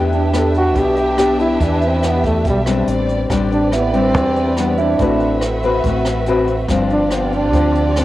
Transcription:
0.00 0.76 E2 loud
0.00 0.74 E3 medium
0.00 0.30 B3 medium
0.00 0.31 D4 medium
0.00 2.85 D4 medium
0.00 0.31 G4 medium
0.00 3.27 G4 medium
0.00 3.27 B4 medium
0.00 2.85 E5 medium
0.12 1.40 D4 soft
0.12 closed hi-hat soft
0.33 1.15 B3 medium
0.33 1.15 D4 medium
0.33 1.15 G4 medium
0.33 0.55 A4 medium
0.33 cross-stick medium
0.33 closed hi-hat soft
0.54 0.79 F#4 loud
0.54 closed hi-hat soft
0.76 1.56 B1 medium
0.76 1.59 B2 medium
0.76 1.40 G4 medium
0.76 kick medium
0.76 closed hi-hat soft
0.96 closed hi-hat soft
1.18 1.75 B3 medium
1.18 1.75 D4 medium
1.18 1.75 G4 medium
1.18 cross-stick medium
1.18 closed hi-hat soft
1.40 1.66 E4 medium
1.40 closed hi-hat soft
1.60 2.46 E2 medium
1.60 2.43 E3 medium
1.60 1.84 D4 medium
1.60 kick medium
1.60 closed hi-hat soft
1.82 closed hi-hat soft
1.87 2.08 C4 medium
2.02 2.45 B3 medium
2.02 2.45 D4 soft
2.02 2.45 G4 medium
2.02 cross-stick medium
2.02 closed hi-hat soft
2.06 2.26 B3 medium
2.24 2.45 A3 medium
2.24 kick medium
2.24 closed hi-hat soft
2.45 2.85 B1 medium
2.45 2.85 B2 soft
2.45 kick medium
2.45 closed hi-hat soft
2.49 2.61 G3 medium
2.66 3.27 G3 medium
2.66 3.27 C4 medium
2.66 3.27 D4 medium
2.66 cross-stick medium
2.66 closed hi-hat soft
2.87 3.27 A1 medium
2.87 3.29 C4 medium
2.87 3.29 D5 medium
2.87 closed hi-hat soft
3.09 closed hi-hat soft
3.30 4.15 A1 medium
3.30 4.13 A2 medium
3.30 3.72 G3 medium
3.30 8.05 C4 medium
3.30 3.73 C4 soft
3.30 3.73 D4 medium
3.30 4.98 G4 medium
3.30 4.98 B4 medium
3.30 4.98 D5 medium
3.30 kick medium
3.30 cross-stick medium
3.30 closed hi-hat soft
3.52 3.76 D4 medium
3.52 closed hi-hat soft
3.72 3.93 B3 medium
3.72 4.77 E4 soft
3.72 cross-stick soft
3.72 closed hi-hat soft
3.94 4.54 G3 medium
3.94 4.60 C4 loud
3.94 4.54 C4 medium
3.94 4.54 D4 medium
3.94 closed hi-hat soft
4.14 4.95 E2 medium
4.14 4.98 E3 soft
4.14 kick medium
4.14 closed hi-hat soft
4.36 closed hi-hat soft
4.57 4.97 G3 medium
4.57 4.82 B3 medium
4.57 4.97 C4 medium
4.57 4.97 D4 medium
4.57 cross-stick medium
4.57 closed hi-hat soft
4.78 5.43 D4 medium
4.78 5.18 E4 medium
4.78 closed hi-hat soft
4.98 5.80 A1 medium
4.98 5.83 A3 medium
4.98 5.42 C4 medium
4.98 6.67 F#4 medium
4.98 5.42 F#4 soft
4.98 6.67 B4 medium
4.98 5.43 B4 medium
4.98 6.67 E5 medium
4.98 kick medium
4.98 closed hi-hat soft
5.20 closed hi-hat soft
5.41 cross-stick medium
5.41 closed hi-hat soft
5.63 6.24 C4 medium
5.63 6.24 F#4 medium
5.63 6.24 B4 medium
5.63 closed hi-hat soft
5.84 6.65 A1 medium
5.84 6.68 A3 medium
5.84 kick medium
5.84 closed hi-hat soft
6.05 cross-stick medium
6.05 closed hi-hat soft
6.26 6.55 C4 medium
6.26 6.55 F#4 medium
6.26 6.55 B4 medium
6.26 closed hi-hat soft
6.48 closed hi-hat soft
6.69 7.53 G1 medium
6.69 7.52 G2 medium
6.69 7.08 F3 medium
6.69 7.09 C4 medium
6.69 7.09 D4 medium
6.69 8.05 F4 medium
6.69 8.05 G4 medium
6.69 8.05 D5 medium
6.69 kick medium
6.69 cross-stick medium
6.69 closed hi-hat soft
6.90 7.15 D4 medium
6.90 closed hi-hat soft
7.11 7.51 F3 medium
7.11 7.34 B3 medium
7.11 7.51 C4 medium
7.11 7.51 D4 medium
7.11 cross-stick medium
7.11 closed hi-hat soft
7.32 8.00 D4 loud
7.32 closed hi-hat soft
7.53 8.05 D2 medium
7.53 8.05 D3 medium
7.53 7.93 F3 medium
7.53 7.93 C4 medium
7.53 7.93 D4 medium
7.53 kick medium
7.53 closed hi-hat soft
7.75 closed hi-hat soft
7.96 8.05 F3 medium
7.96 8.05 C4 medium
7.96 8.05 D4 medium
7.96 cross-stick medium
7.96 closed hi-hat soft

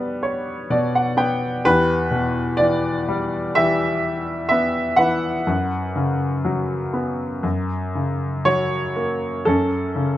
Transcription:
0.00 0.69 B2 medium
0.00 1.65 G3 soft
0.00 1.17 B3 medium
0.00 1.13 B4 medium
0.00 0.69 D5 loud
0.23 0.67 C#5 medium
0.70 1.61 B2 medium
0.70 0.92 D5 medium
0.95 1.16 F#5 medium
1.17 1.62 B3 soft
1.17 1.60 G5 medium
1.65 5.44 E2 medium
1.65 3.51 G4 medium
1.65 2.62 B4 medium
2.11 3.98 B2 medium
2.57 3.56 E3 soft
2.57 3.57 D5 medium
3.08 4.95 G3 soft
3.55 4.96 E3 medium
3.55 5.44 G4 medium
3.55 4.47 E5 medium
4.49 5.45 B3 soft
4.49 4.99 E5 medium
4.96 5.45 E3 soft
4.96 6.91 B4 medium
4.96 6.91 F#5 medium
5.47 7.41 F#2 medium
5.96 7.41 C#3 soft
6.45 7.42 F#3 soft
6.93 7.43 B3 soft
7.43 9.41 F#2 medium
7.95 9.42 C#3 soft
8.45 9.43 F#3 soft
8.45 9.49 C#5 medium
8.96 9.45 A#3 soft
9.45 10.17 F#2 soft
9.45 10.17 C#4 medium
9.45 10.17 A4 medium
9.96 10.17 C#3 soft

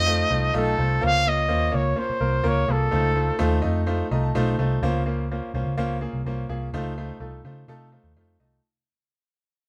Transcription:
0.00 0.23 F2 medium
0.00 0.55 D#5 loud
0.06 0.25 A3 loud
0.06 0.25 D#4 medium
0.06 0.25 F4 medium
0.06 0.26 C5 loud
0.30 0.49 C2 loud
0.30 0.49 A3 medium
0.30 0.49 D#4 medium
0.30 0.49 F4 medium
0.30 0.49 C5 medium
0.54 0.73 B1 medium
0.54 0.73 A3 loud
0.54 0.73 D#4 loud
0.54 0.73 F4 loud
0.54 1.06 A4 loud
0.54 0.73 D#5 loud
0.78 0.97 C2 loud
0.78 0.97 A3 medium
0.78 0.97 D#4 medium
0.78 0.97 F4 medium
0.78 0.97 C5 medium
1.01 1.50 C#2 loud
1.01 1.69 C#3 medium
1.01 1.20 A#3 medium
1.01 1.20 C#4 medium
1.01 1.20 F4 medium
1.01 1.20 C5 loud
1.01 1.30 F5 loud
1.26 1.45 A#3 medium
1.26 1.45 C#4 medium
1.26 1.45 F4 medium
1.26 1.45 C#5 medium
1.26 1.77 D#5 loud
1.48 1.69 D#2 medium
1.48 1.68 A#3 medium
1.48 1.68 C#4 loud
1.48 1.68 F4 medium
1.48 1.68 C5 loud
1.72 1.92 C#2 medium
1.72 1.91 A#3 medium
1.72 1.91 C#4 medium
1.72 1.91 F4 medium
1.72 1.91 C#5 loud
1.72 2.00 C#5 medium
1.96 2.15 A#3 medium
1.96 2.16 C#4 medium
1.96 2.15 F4 medium
1.96 2.49 C5 loud
1.96 2.16 C#5 medium
2.10 muted picked electric bass stroke soft
2.20 2.39 C2 loud
2.20 2.39 A#3 medium
2.20 2.39 C#4 medium
2.20 2.40 F4 medium
2.20 2.40 A#4 medium
2.44 2.63 C#2 loud
2.44 2.63 A#3 loud
2.44 2.63 C#4 medium
2.44 2.63 F4 loud
2.44 2.63 A#4 loud
2.48 2.73 C#5 medium
2.68 2.87 C2 medium
2.68 2.87 A#3 medium
2.68 2.87 C#4 medium
2.68 2.87 F4 medium
2.68 2.87 G#4 medium
2.68 3.65 A4 loud
2.91 3.30 C#2 loud
2.91 3.60 C#3 medium
2.91 3.11 A3 loud
2.91 3.11 D#4 loud
2.91 3.11 F4 medium
2.91 3.11 C5 loud
3.15 3.34 A3 medium
3.15 3.35 D#4 medium
3.15 3.35 F4 medium
3.15 3.34 C5 medium
3.39 3.59 D#2 medium
3.39 3.58 A3 loud
3.39 3.58 D#4 loud
3.39 3.58 F4 loud
3.39 3.58 C5 loud
3.62 4.01 F2 medium
3.62 3.81 A3 loud
3.62 3.81 D#4 loud
3.62 3.82 F4 medium
3.62 3.82 D#5 loud
3.86 4.06 A3 loud
3.86 4.06 D#4 medium
3.86 4.06 F4 loud
3.86 4.06 C5 loud
4.11 4.30 C2 loud
4.11 4.30 A3 medium
4.11 4.30 D#4 medium
4.11 4.30 F4 medium
4.11 4.30 D#5 loud
4.11 4.23 A#5 medium
4.24 4.35 A5 medium
4.35 4.54 B1 loud
4.35 4.54 A3 loud
4.35 4.54 D#4 loud
4.35 4.54 F4 loud
4.35 4.54 C5 loud
4.35 4.57 F5 medium
4.58 4.77 C2 medium
4.58 4.78 A3 loud
4.58 4.78 D#4 medium
4.58 4.78 F4 medium
4.58 4.78 C5 medium
4.58 4.81 D#5 medium
4.82 5.39 C#2 loud
4.82 5.50 C#3 medium
4.82 5.01 A#3 loud
4.82 5.02 C#4 loud
4.82 5.02 F4 loud
4.82 5.02 C5 loud
5.06 5.25 A#3 medium
5.06 5.25 C#4 medium
5.06 5.25 F4 medium
5.06 5.25 C5 medium
5.31 5.50 A#3 medium
5.31 5.50 C#4 medium
5.31 5.50 F4 medium
5.31 5.50 C5 medium
5.54 5.63 C2 loud
5.54 5.73 A#3 medium
5.54 5.73 C#4 medium
5.54 5.73 F4 medium
5.54 5.73 C5 loud
5.65 5.75 C#2 medium
5.77 6.05 C#2 loud
5.77 5.97 A#3 loud
5.77 5.97 C#4 loud
5.77 5.96 F4 loud
5.77 5.97 C5 loud
6.01 6.20 A#3 medium
6.01 6.20 C#4 medium
6.01 6.20 F4 medium
6.01 6.20 G#4 medium
6.13 6.23 C2 medium
6.25 6.44 C2 medium
6.25 6.45 A#3 loud
6.25 6.45 C#4 medium
6.25 6.45 F4 medium
6.25 6.45 C5 medium
6.49 6.68 C2 loud
6.49 6.68 A#3 medium
6.49 6.68 C#4 medium
6.49 6.68 F4 medium
6.49 6.68 G#4 loud
6.73 7.10 C#2 loud
6.73 7.41 C#3 medium
6.73 6.92 A3 loud
6.73 6.92 D#4 loud
6.73 6.92 F4 loud
6.73 6.92 C5 loud
6.98 7.16 A3 loud
6.98 7.16 D#4 medium
6.98 7.16 F4 medium
6.98 7.16 C5 loud
7.20 7.39 C2 medium
7.20 7.39 A3 medium
7.20 7.39 D#4 medium
7.20 7.40 F4 medium
7.20 7.40 A4 medium
7.44 7.63 C#3 medium
7.44 7.63 A3 medium
7.44 7.64 D#4 medium
7.44 7.64 F4 medium
7.44 7.64 C5 medium
7.68 7.96 C3 medium
7.68 7.87 A3 loud
7.68 7.87 D#4 loud
7.68 7.87 F4 loud
7.68 7.88 A4 loud
7.92 8.11 A3 medium
7.92 8.11 D#4 medium
7.92 8.11 F4 medium
7.92 8.11 C5 medium
8.04 8.13 D#2 medium
8.16 8.35 F2 medium
8.16 8.35 A3 medium
8.16 8.35 D#4 medium
8.16 8.35 F4 medium
8.16 8.35 C5 medium
8.16 8.39 F5 medium
8.40 8.58 C2 medium
8.40 8.59 A3 medium
8.40 8.59 D#4 medium
8.40 8.59 F4 medium
8.40 8.59 D#5 medium
8.40 8.63 A5 medium

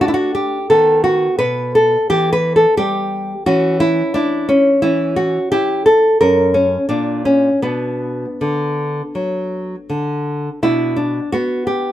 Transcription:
0.00 0.68 A3 soft
0.00 0.57 D4 soft
0.00 0.08 F#4 medium
0.08 0.13 E4 medium
0.14 0.34 F#4 medium
0.35 0.69 G4 medium
0.70 1.27 D#3 soft
0.70 2.06 B3 soft
0.70 1.03 A4 medium
1.04 1.38 F#4 medium
1.39 1.96 B2 medium
1.39 1.74 B4 medium
1.75 2.09 A4 medium
2.10 2.65 E3 soft
2.10 3.43 B3 soft
2.10 2.32 G4 medium
2.33 2.55 B4 medium
2.56 2.77 A4 medium
2.77 3.33 G3 soft
2.77 3.44 G4 medium
3.46 4.01 E3 medium
3.46 4.47 C#4 soft
3.46 3.80 F#4 medium
3.80 4.13 E4 medium
4.14 4.47 D4 medium
4.14 4.69 E4 medium
4.49 4.81 C#4 medium
4.82 5.37 E3 medium
4.82 6.16 C#4 soft
4.82 5.15 E4 medium
5.16 5.50 F#4 medium
5.52 6.07 E4 medium
5.52 5.84 G4 medium
5.86 6.19 A4 medium
6.21 6.76 F#2 soft
6.21 6.53 C#4 soft
6.21 6.53 A#4 medium
6.54 6.88 C#4 medium
6.89 7.49 A#2 soft
6.89 7.24 D4 medium
7.25 7.62 C#4 medium
7.62 8.24 B2 soft
7.62 9.85 B3 medium
7.62 10.59 D4 soft
8.41 9.01 D3 soft
9.15 9.75 F#3 soft
9.90 10.48 D3 soft
10.63 11.19 B2 medium
10.63 10.95 D4 soft
10.63 10.96 E4 medium
10.96 11.30 D4 medium
11.32 11.89 B3 soft
11.32 11.66 F#4 medium
11.67 11.92 G4 medium

